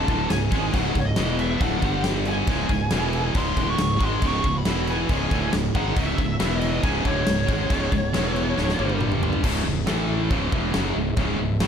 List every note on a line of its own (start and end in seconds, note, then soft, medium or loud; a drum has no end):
0.00 1.17 C#3 medium
0.00 1.17 G#3 medium
0.00 1.82 E4 medium
0.00 1.17 C#5 medium
0.00 0.30 A5 loud
0.07 0.29 D1 loud
0.07 0.29 D2 loud
0.07 0.29 A2 loud
0.07 0.30 D3 loud
0.07 kick loud
0.07 crash medium
0.30 0.51 C#1 medium
0.30 0.48 C#2 medium
0.30 0.48 G#2 medium
0.30 0.71 G#5 loud
0.30 snare loud
0.30 crash medium
0.51 0.72 G#1 loud
0.51 0.72 G#2 medium
0.51 0.73 D#3 loud
0.51 0.73 G#3 loud
0.51 kick loud
0.51 crash medium
0.73 0.94 C#1 loud
0.73 0.94 C#2 loud
0.73 0.94 G#2 loud
0.73 0.95 C#3 loud
0.73 0.98 F#5 loud
0.73 kick loud
0.73 crash medium
0.95 1.16 C#1 medium
0.95 1.13 C#2 medium
0.95 1.13 G#2 medium
0.95 kick medium
0.95 crash medium
1.00 1.05 C#5 medium
1.06 1.39 D#5 medium
1.16 1.58 E1 medium
1.16 1.60 E2 medium
1.16 1.61 B2 medium
1.16 1.61 E3 loud
1.16 1.61 B3 medium
1.16 1.61 E5 medium
1.16 snare loud
1.16 crash medium
1.39 1.62 E5 medium
1.39 crash medium
1.61 1.81 D1 medium
1.61 1.83 D2 loud
1.61 1.84 A2 loud
1.61 1.83 C#3 medium
1.61 1.84 D3 loud
1.61 1.83 G#3 medium
1.61 1.83 C#5 medium
1.61 2.02 F#5 medium
1.61 kick loud
1.61 crash medium
1.82 2.44 G1 loud
1.82 2.48 G2 medium
1.82 2.48 D3 medium
1.82 2.48 G3 medium
1.82 2.49 G3 loud
1.82 2.48 G4 medium
1.82 2.48 D5 medium
1.82 kick loud
1.82 crash medium
2.04 snare loud
2.04 crash medium
2.25 3.33 G#5 medium
2.25 crash medium
2.47 2.68 C#1 loud
2.47 2.69 C#2 medium
2.47 2.69 G#2 loud
2.47 2.92 C#3 medium
2.47 2.70 C#3 loud
2.47 2.92 G#3 medium
2.47 4.65 E4 medium
2.47 2.92 C#5 medium
2.47 kick loud
2.47 crash medium
2.69 2.90 C#1 medium
2.69 2.88 C#2 medium
2.69 2.88 G#2 medium
2.69 kick loud
2.69 crash medium
2.91 3.33 E1 loud
2.91 3.35 E2 medium
2.91 3.36 B2 medium
2.91 3.36 E3 medium
2.91 3.36 E3 loud
2.91 3.36 B4 medium
2.91 snare loud
2.91 crash medium
3.13 crash medium
3.35 3.56 C#1 loud
3.35 3.57 C#2 loud
3.35 3.57 G#2 loud
3.35 4.65 C#3 medium
3.35 3.58 C#3 loud
3.35 4.65 G#3 medium
3.35 4.65 C#5 medium
3.35 3.67 C6 loud
3.35 kick loud
3.35 crash medium
3.56 3.77 D1 loud
3.56 3.79 D2 medium
3.56 3.79 A2 loud
3.56 3.80 D3 loud
3.56 kick loud
3.56 crash medium
3.70 4.03 C#6 loud
3.78 3.99 C#1 medium
3.78 3.97 C#2 medium
3.78 3.97 G#2 medium
3.78 snare loud
3.78 crash medium
4.00 4.21 G#1 medium
4.00 4.22 G#2 loud
4.00 4.23 D#3 loud
4.00 4.23 G#3 loud
4.00 kick loud
4.00 crash medium
4.04 4.25 C6 medium
4.22 4.43 C#1 loud
4.22 4.44 C#2 medium
4.22 4.44 G#2 loud
4.22 4.45 C#3 loud
4.22 kick loud
4.22 crash medium
4.26 4.55 C#6 loud
4.44 4.65 C#1 medium
4.44 4.62 C#2 medium
4.44 4.63 G#2 medium
4.44 kick medium
4.44 crash medium
4.58 4.90 B5 medium
4.65 5.07 E1 medium
4.65 5.09 E2 medium
4.65 5.10 B2 loud
4.65 5.10 B2 medium
4.65 5.10 E3 loud
4.65 5.10 E3 medium
4.65 8.54 E4 medium
4.65 5.10 B4 medium
4.65 snare loud
4.65 crash medium
4.87 5.50 G#5 medium
4.87 crash medium
5.09 5.30 C#1 loud
5.09 5.31 C#2 loud
5.09 5.31 G#2 loud
5.09 6.39 C#3 medium
5.09 5.32 C#3 loud
5.09 6.39 G#3 medium
5.09 6.39 C#5 medium
5.09 kick loud
5.09 crash medium
5.31 5.52 D1 loud
5.31 5.53 D2 loud
5.31 5.53 A2 loud
5.31 5.54 D3 loud
5.31 kick loud
5.31 crash medium
5.53 5.74 C#1 medium
5.53 5.71 C#2 medium
5.53 5.71 G#2 medium
5.53 snare loud
5.53 crash medium
5.75 5.95 G#1 medium
5.75 5.96 G#2 loud
5.75 5.97 D#3 loud
5.75 5.97 G#3 loud
5.75 5.98 F#5 medium
5.75 kick loud
5.75 crash medium
5.96 6.17 C#1 loud
5.96 6.18 C#2 loud
5.96 6.18 G#2 loud
5.96 6.19 C#3 loud
5.96 6.58 E5 loud
5.96 kick loud
5.96 crash medium
6.18 6.39 C#1 medium
6.18 6.40 C#2 medium
6.18 6.36 G#2 medium
6.18 kick loud
6.18 crash medium
6.40 6.81 E1 loud
6.40 6.83 E2 loud
6.40 6.84 B2 medium
6.40 6.83 B2 loud
6.40 6.84 E3 loud
6.40 6.84 E3 medium
6.40 6.84 B4 medium
6.40 snare loud
6.40 crash medium
6.58 6.87 D#5 loud
6.58 crash medium
6.83 7.04 C#1 loud
6.83 7.05 C#2 loud
6.83 7.06 G#2 loud
6.83 8.13 C#3 medium
6.83 7.06 C#3 loud
6.83 8.13 G#3 medium
6.83 8.13 C#5 medium
6.83 7.06 G#5 loud
6.83 kick loud
6.83 crash medium
7.05 7.25 D1 loud
7.05 7.27 D2 medium
7.05 7.27 A2 medium
7.05 7.27 D3 loud
7.05 8.97 C#5 medium
7.05 kick loud
7.05 crash medium
7.27 7.48 C#1 medium
7.27 7.45 C#2 medium
7.27 7.45 G#2 medium
7.27 snare loud
7.27 crash medium
7.48 7.69 G#1 loud
7.48 7.70 G#2 loud
7.48 7.71 D#3 loud
7.48 7.71 G#3 loud
7.48 kick loud
7.48 crash medium
7.70 7.91 C#1 loud
7.70 7.91 C#2 loud
7.70 7.91 G#2 loud
7.70 7.92 C#3 loud
7.70 kick loud
7.70 crash medium
7.92 8.12 C#1 medium
7.92 8.10 C#2 medium
7.92 8.10 G#2 medium
7.92 kick loud
7.92 crash medium
8.14 8.55 E1 loud
8.14 8.57 E2 medium
8.14 8.57 B2 medium
8.14 8.58 B2 medium
8.14 8.57 E3 loud
8.14 8.58 E3 medium
8.14 8.58 B4 medium
8.14 snare loud
8.14 crash medium
8.36 crash medium
8.57 8.78 D1 loud
8.57 8.78 D2 loud
8.57 8.79 A2 loud
8.57 8.79 C#3 medium
8.57 8.79 D3 loud
8.57 8.79 G#3 medium
8.57 8.79 E4 medium
8.57 8.79 C#5 medium
8.57 snare medium
8.69 snare medium
8.79 9.40 G1 loud
8.79 9.43 G2 medium
8.79 9.44 D3 medium
8.79 9.43 D3 medium
8.79 9.44 G3 medium
8.79 9.44 G3 loud
8.79 9.43 G4 medium
8.79 9.44 D5 medium
8.79 high tom medium
8.89 high tom medium
9.01 mid tom medium
9.12 mid tom medium
9.23 floor tom loud
9.33 floor tom medium
9.43 9.64 C#1 loud
9.43 9.65 C#2 loud
9.43 9.65 G#2 loud
9.43 9.66 C#3 loud
9.43 11.67 E3 medium
9.43 9.87 C#4 medium
9.43 9.87 G#4 medium
9.43 11.67 E5 medium
9.43 kick loud
9.43 crash loud
9.43 crash medium
9.66 9.86 C#1 medium
9.66 9.83 C#2 medium
9.66 9.83 G#2 medium
9.87 10.28 A1 loud
9.87 10.30 A2 medium
9.87 10.31 E3 loud
9.87 10.30 A3 medium
9.87 10.31 A3 loud
9.87 10.30 A4 medium
9.87 snare loud
9.87 crash medium
10.30 10.51 C#1 medium
10.30 10.52 C#2 loud
10.30 10.52 G#2 loud
10.30 10.53 C#3 loud
10.30 11.59 C#4 medium
10.30 11.60 G#4 medium
10.30 kick loud
10.30 crash medium
10.52 10.73 E1 medium
10.52 10.74 E2 loud
10.52 10.74 B2 loud
10.52 10.74 E3 loud
10.52 kick loud
10.74 10.95 F#1 loud
10.74 10.95 F#2 loud
10.74 10.96 C#3 loud
10.74 10.96 F#3 loud
10.74 snare loud
10.74 crash medium
10.96 11.16 C#1 medium
10.96 11.13 C#2 medium
10.96 11.14 G#2 medium
11.17 11.37 C#1 loud
11.17 11.38 C#2 loud
11.17 11.38 G#2 loud
11.17 11.39 C#3 loud
11.17 kick loud
11.17 crash medium
11.39 11.59 C#1 medium
11.39 11.56 C#2 medium
11.39 11.57 G#2 medium
11.60 11.67 A1 loud
11.60 11.67 A2 loud
11.60 11.67 E3 loud
11.60 11.67 A3 medium
11.60 11.67 A3 loud
11.60 11.67 A4 medium
11.60 snare loud
11.60 crash medium